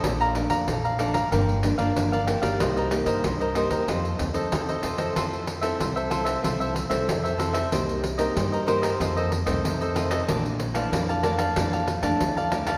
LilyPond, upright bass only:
\new Staff \with { instrumentName = "Upright bass" } { \clef bass \time 4/4 \key f \mixolydian \tempo 4 = 94 bes,,8. f,16 bes,,8. aes,,16 g,,8. g,,16 g,,8. g,,16 | c,8. g,16 c,8. ees,16 f,8 d,8 ees,8 f,8 | \key f \major f,4 c,4 c,8. c,16 f,4 | c,4 g,4 f,8. c,16 f,4 |
bes,,4 f,4 f,8. f,16 d,4 | }